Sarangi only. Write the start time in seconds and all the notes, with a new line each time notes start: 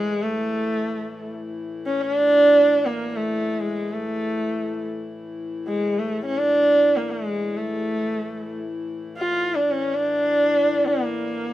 Already playing: G#3
0.23 A3
1.86 C#4
2.01 C#4
2.12 D4
2.86 A#3
3.16 A3
3.62 G#3
3.93 A3
5.67 G#3
5.99 A3
6.25 C#4
6.38 D4
6.97 A#3
7.11 G#3
7.56 A3
9.18 F4
9.55 D4
9.72 C#4
9.94 D4
10.87 A#3